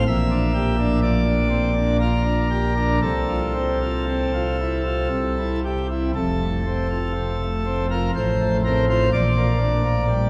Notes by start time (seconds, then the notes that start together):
0.07 A#1 A#2 E5
0.31 D4
0.54 G4
0.79 D4
1.02 F3 D5
1.26 D4
1.49 C4
1.75 D4
2.00 F4 A#4
2.25 D4
2.50 G4
2.76 D4
3.02 C2 C3 A4
3.29 F4
3.55 C4
3.81 F4
4.08 C4
4.33 F4
4.61 E4
4.86 F4
5.11 C2 C3
5.39 E4
5.65 G4
5.90 E4
6.15 F1 F2 A4
6.40 A3
6.66 C4
6.90 F4
7.15 C3
7.41 A3
7.65 C4
7.90 F4 A#4
8.15 A1 A2 C5
8.41 A3
8.64 C4 A#4
8.89 F4 C5
9.13 A#1 A#2 D5
9.36 A#3
9.60 D4
9.85 A#3
10.09 G3